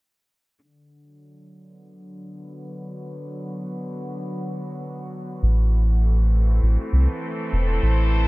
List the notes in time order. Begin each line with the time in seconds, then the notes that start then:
0.63 D3
1.03 F#3
1.71 B3
2.34 B4
2.39 F#4
5.43 A1 E3
5.72 C4
5.92 A3
6.63 A1
6.93 C2
6.97 A4
7.53 E1
7.58 C5
7.83 A1